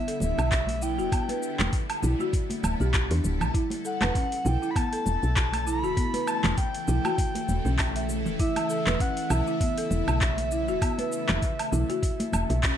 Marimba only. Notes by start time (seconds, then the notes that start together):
0.08 A4
0.82 E4
0.98 F#4
1.12 B3
1.29 B4
2.03 E4
2.20 F#4
2.81 G4
3.11 D4
3.54 E4
3.85 A4
4.01 B4
4.15 C#4
4.45 E4
4.62 E4
4.76 B3
4.93 A4
5.67 E4
5.84 F#4
5.97 B3
6.14 B4
6.88 E4
7.05 F#4
7.66 C#4
7.79 E5
7.96 E5
8.40 E4
8.70 A4
8.87 B4
9.00 C#4
9.31 E4
9.47 E4
9.61 B3
9.78 A4
10.52 E4
10.68 F#4
10.82 B3
10.99 B4
11.73 E4
11.90 F#4
12.50 E5
12.64 C#4